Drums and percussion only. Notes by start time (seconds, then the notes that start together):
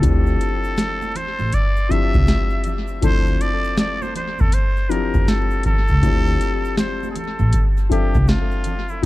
0.03 kick, closed hi-hat, shaker
0.27 shaker
0.40 closed hi-hat, high conga, shaker
0.64 shaker
0.77 snare, closed hi-hat, low conga, shaker
1.02 high conga, shaker
1.15 closed hi-hat, low conga, shaker
1.39 high conga, shaker
1.52 kick, closed hi-hat, shaker
1.76 shaker
1.91 kick, closed hi-hat, shaker
2.14 kick, high conga, shaker
2.27 snare, closed hi-hat, shaker
2.50 shaker
2.64 closed hi-hat, low conga, shaker
2.87 shaker
3.02 kick, closed hi-hat, shaker
3.27 shaker
3.40 closed hi-hat, high conga, shaker
3.64 shaker
3.77 snare, closed hi-hat, low conga, shaker
4.02 high conga, shaker
4.15 closed hi-hat, low conga, shaker
4.39 kick, high conga, shaker
4.52 closed hi-hat, shaker
4.77 shaker
4.90 closed hi-hat, shaker
5.14 kick, high conga, shaker
5.27 snare, closed hi-hat, shaker
5.50 shaker
5.63 kick, closed hi-hat, low conga, shaker
5.88 shaker
6.03 kick, closed hi-hat, shaker
6.27 shaker
6.41 closed hi-hat, high conga, shaker
6.65 shaker
6.77 snare, closed hi-hat, low conga, shaker
7.03 high conga, shaker
7.16 closed hi-hat, low conga, shaker
7.39 high conga, shaker
7.53 kick, closed hi-hat, shaker
7.77 shaker
7.91 kick, closed hi-hat, shaker
8.14 kick, high conga, shaker
8.27 snare, closed hi-hat, shaker
8.51 shaker
8.64 closed hi-hat, low conga, shaker
8.89 shaker